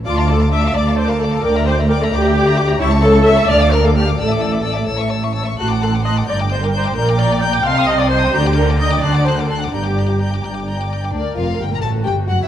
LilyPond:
<<
  \new Staff \with { instrumentName = "Violin section" } { \time 6/8 \key d \minor \tempo 4. = 87 d'''16 a''16 d'''16 a''16 d'''16 a''16 d'''16 a''16 d'''16 a''16 d'''16 a''16 | d'''16 bes''16 d'''16 bes''16 d'''16 bes''16 d'''16 bes''16 d'''16 bes''16 d'''16 bes''16 | cis'''16 a''16 cis'''16 a''16 cis'''16 a''16 f'''16 d'''16 f'''16 d'''16 f'''16 d'''16 | e'''16 d'''16 e'''16 d'''16 e'''16 d'''16 e'''16 cis'''16 e'''16 cis'''16 e'''16 cis'''16 |
\key g \minor fis'''16 d'''16 fis'''16 d'''16 fis'''16 d'''16 g'''16 d'''16 g'''16 d'''16 g'''16 d'''16 | g'''16 d'''16 g'''16 d'''16 g'''16 d'''16 c'''16 ees'''16 c'''16 ees'''16 c'''16 ees'''16 | g'''16 d'''16 g'''16 d'''16 g'''16 d'''16 fis'''16 d'''16 fis'''16 d'''16 fis'''16 d'''16 | g'''16 d'''16 g'''16 d'''16 g'''16 d'''16 g'''16 d'''16 g'''16 d'''16 g'''16 d'''16 |
d''8 f''8 g''16 bes''16 a''8 g''8 fis''16 e''16 | }
  \new Staff \with { instrumentName = "Violin section" } { \time 6/8 \key d \minor <d'' a''>16 <f'' d'''>16 <d'' a''>16 <f'' d'''>16 <d'' a''>16 <f'' d'''>16 <d'' a''>16 <f'' d'''>16 <d'' a''>16 <f'' d'''>16 <d'' a''>16 <f'' d'''>16 | <d'' g''>16 <d'' e''>16 <d'' g''>16 <d'' e''>16 <d'' g''>16 <d'' e''>16 <d'' g''>16 <d'' e''>16 <d'' g''>16 <d'' e''>16 <d'' g''>16 <d'' e''>16 | <cis'' a''>16 <e'' cis'''>16 <cis'' a''>16 <e'' cis'''>16 <cis'' a''>16 <e'' cis'''>16 <d'' a''>16 f''16 <d'' a''>16 f''16 <d'' a''>16 f''16 | <d'' a''>16 <d'' e''>16 <d'' a''>16 <d'' e''>16 <d'' a''>16 <d'' e''>16 <cis'' a''>16 <e'' cis'''>16 <cis'' a''>16 <e'' cis'''>16 <cis'' a''>16 <e'' cis'''>16 |
\key g \minor <a'' c'''>16 <fis'' a''>16 <a'' c'''>16 <fis'' a''>16 <a'' c'''>16 <fis'' a''>16 <d'' bes''>16 g''16 <d'' bes''>16 g''16 <d'' bes''>16 g''16 | <d'' bes''>16 g''16 <d'' bes''>16 g''16 <d'' bes''>16 g''16 <ees'' a''>16 <g'' c'''>16 <ees'' a''>16 <g'' c'''>16 <ees'' a''>16 <g'' c'''>16 | <d'' bes''>16 g''16 <d'' bes''>16 g''16 <d'' bes''>16 g''16 <a'' c'''>16 <fis'' a''>16 <a'' c'''>16 <fis'' a''>16 <a'' c'''>16 <fis'' a''>16 | <d'' bes''>16 g''16 <d'' bes''>16 g''16 <d'' bes''>16 g''16 <d'' bes''>16 g''16 <d'' bes''>16 g''16 <d'' bes''>16 g''16 |
d'8 f'8 g'16 bes'16 a'8 g'8 fis'16 e'16 | }
  \new Staff \with { instrumentName = "Viola section" } { \time 6/8 \key d \minor f'8 a'8 e''8 d''8 c''16 bes'16 a'8 | bes'8 c''8 bes'16 a'16 g'4. | e'8 a'8 e''8 d''8 bes'16 a'16 g'8 | a'4. r4. |
\key g \minor fis'8 a'8 ees''8 d''8 c''16 bes'16 c''8 | bes'8 d''8 g''8 f''8 ees''16 d''16 c''8 | g'8 bes'8 ees''8 d''8 c''16 bes'16 a'8 | g'4. r4. |
bes'4. fis'4. | }
  \new Staff \with { instrumentName = "Cello section" } { \clef bass \time 6/8 \key d \minor d,4. d,4. | d,4. d,4. | cis,4. d,4. | a,4. a,4. |
\key g \minor a,4. g,4. | bes,4. c4. | d4. d4. | g,4. g,4. |
d,8 f,8 g,16 bes,16 a,8 g,8 fis,16 e,16 | }
  \new Staff \with { instrumentName = "Double bass section" } { \clef bass \time 6/8 \key d \minor d,4. d,4. | d,4. d,4. | cis,4. d,4. | a,,4. a,,4. |
\key g \minor a,,4. g,,4. | bes,,4. c,4. | d,4. d,4. | g,,4. g,,4. |
d,8 f,,8 g,,16 r16 a,,8 g,,8 fis,,16 r16 | }
>>